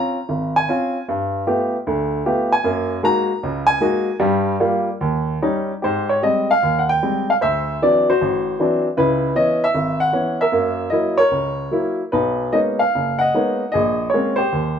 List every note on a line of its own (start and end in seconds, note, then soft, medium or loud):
0.00 0.17 C4 medium
0.00 0.17 C#4 soft
0.00 0.17 F4 medium
0.00 0.52 A#5 medium
0.29 0.63 G#1 medium
0.56 1.04 G#5 medium
0.69 0.96 C4 medium
0.69 0.96 C#4 soft
0.69 0.97 F4 medium
1.08 1.42 G2 medium
1.47 1.75 A3 medium
1.47 1.75 B3 medium
1.47 1.75 F4 medium
1.47 1.75 G4 medium
1.87 2.21 D2 medium
1.87 2.21 D3 medium
2.26 2.53 A3 medium
2.26 2.53 B3 medium
2.26 2.53 F4 medium
2.26 2.53 G4 medium
2.52 3.00 G#5 medium
2.64 2.98 F#2 medium
2.64 2.98 A#3 medium
3.03 3.30 G#3 medium
3.03 3.30 A#3 medium
3.03 3.31 D#4 medium
3.03 3.31 F#4 medium
3.03 3.65 A#5 loud
3.43 3.76 C#2 medium
3.43 3.76 C#3 medium
3.67 4.16 G#5 loud
3.81 4.08 G#3 medium
3.81 4.08 A#3 medium
3.81 4.09 D#4 medium
3.81 4.09 F#4 medium
4.20 4.54 G2 medium
4.20 4.54 G3 medium
4.60 4.88 G3 medium
4.60 4.88 A#3 medium
4.60 4.88 F4 medium
5.01 5.36 D#2 medium
5.42 5.71 G3 medium
5.42 5.71 C#4 medium
5.42 5.71 D#4 medium
5.82 6.18 G#2 medium
5.82 6.58 G4 medium
5.82 6.11 C5 medium
6.09 6.21 C#5 medium
6.22 6.50 G3 soft
6.22 6.50 G#3 soft
6.22 6.51 C4 medium
6.22 6.50 D#5 medium
6.51 6.81 F5 medium
6.63 6.97 D#2 medium
6.79 6.88 F#5 medium
6.89 7.29 G5 medium
7.03 7.30 G3 soft
7.03 7.30 G#3 soft
7.03 7.30 C4 medium
7.30 7.35 F5 medium
7.41 7.76 D2 medium
7.41 8.08 C5 medium
7.41 7.82 E5 medium
7.82 8.09 E3 soft
7.82 8.09 F#3 soft
7.82 8.09 C4 soft
7.82 8.10 D4 medium
7.82 8.06 D5 medium
8.10 8.81 F#4 medium
8.10 8.81 C5 medium
8.21 8.54 A1 medium
8.59 8.86 E3 medium
8.59 8.86 F#3 soft
8.59 8.86 C4 soft
8.59 8.87 D4 medium
8.97 9.31 C#2 medium
8.97 9.30 C#3 medium
8.97 9.70 E4 medium
8.97 9.33 B4 medium
9.35 9.63 E3 soft
9.35 9.63 B3 soft
9.35 9.63 C#4 medium
9.35 9.62 D#5 medium
9.64 9.99 E5 medium
9.75 10.08 G#1 medium
10.00 10.40 F#5 medium
10.13 10.40 E3 medium
10.13 10.41 B3 soft
10.13 10.41 C#4 medium
10.41 11.15 A#4 medium
10.41 10.94 E5 medium
10.52 10.86 F#2 medium
10.52 10.87 A#3 medium
10.90 11.20 F#3 soft
10.90 11.20 A#3 soft
10.90 11.20 E4 medium
10.90 11.15 D#5 medium
11.18 11.96 A#4 medium
11.18 11.95 C#5 loud
11.31 11.67 C#2 medium
11.71 12.00 F#3 soft
11.71 12.00 A#3 soft
11.71 12.01 E4 medium
12.12 12.48 B1 medium
12.12 12.52 D#4 medium
12.12 12.54 B4 medium
12.53 12.81 G#3 soft
12.53 12.81 A#3 soft
12.53 12.81 B3 soft
12.53 12.81 C#4 soft
12.53 12.81 D#4 medium
12.53 12.59 D#5 medium
12.79 13.17 F5 medium
12.95 13.29 F#1 medium
13.19 13.69 D#5 medium
13.19 13.73 F#5 medium
13.34 13.61 G#3 soft
13.34 13.62 A#3 soft
13.34 13.61 B3 soft
13.34 13.62 C#4 soft
13.34 13.62 D#4 medium
13.72 14.08 A#1 medium
13.72 14.47 G#4 medium
13.72 14.08 D#5 medium
14.10 14.40 G#3 medium
14.10 14.40 A#3 soft
14.10 14.35 C#5 medium
14.14 14.40 C4 soft
14.14 14.41 C#4 medium
14.36 14.79 G4 medium
14.36 14.79 C5 medium
14.52 14.79 D#2 medium